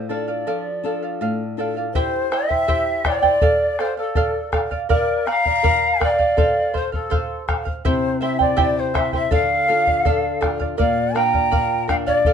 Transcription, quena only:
1.94 C5
2.32 E5
3.07 D5
3.80 C5
3.98 A4
4.91 D5
5.27 A#5
6.01 F5
6.76 C5
6.94 A4
7.85 C5
8.22 E5
8.41 D5
8.80 C5
8.98 E5
9.15 E5
9.34 F5
10.78 F5
11.15 A#5
11.89 G5
12.07 D5

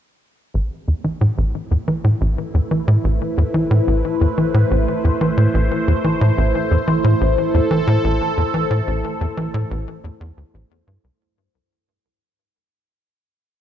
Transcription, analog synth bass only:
0.54 A1
0.88 E2
1.04 E3
1.21 A2
1.38 A1
1.71 E2
1.88 E3
2.04 A2
2.21 A1
2.54 E2
2.71 E3
2.88 A2
3.04 A1
3.37 E2
3.54 E3
3.71 A2
3.87 A1
4.21 E2
4.38 E3
4.54 A2
4.71 A1
5.04 E2
5.21 E3
5.37 A2
5.54 A1
5.88 E2
6.04 E3
6.21 A2
6.38 A1
6.71 E2
6.88 E3
7.04 A2
7.21 A1
7.54 E2
7.71 E3
7.87 A2
8.04 A1
8.37 E2
8.54 E3
8.71 A2
8.87 A1
9.21 E2
9.37 E3
9.54 A2
9.71 A1
10.04 E2
10.20 E2
10.37 D2
10.54 A1
10.87 G2
11.04 C2

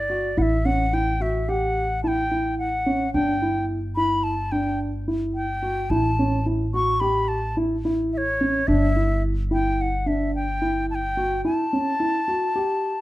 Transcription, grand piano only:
0.10 F#4
0.37 E4
0.65 C#4
0.93 E4
1.20 F#4
1.48 G4
2.04 E4
2.31 E4
2.86 C#4
3.14 D4
3.42 E4
3.97 E4
4.52 D4
5.08 E4
5.62 F#4
5.91 E4
6.19 C#4
6.46 E4
6.74 F#4
7.01 G4
7.57 E4
7.85 E4
8.41 C#4
8.68 D4
8.96 E4
9.51 E4
10.06 D4
10.62 E4
11.17 F#4
11.45 E4
11.73 C#4
12.00 E4
12.28 F#4
12.55 G4

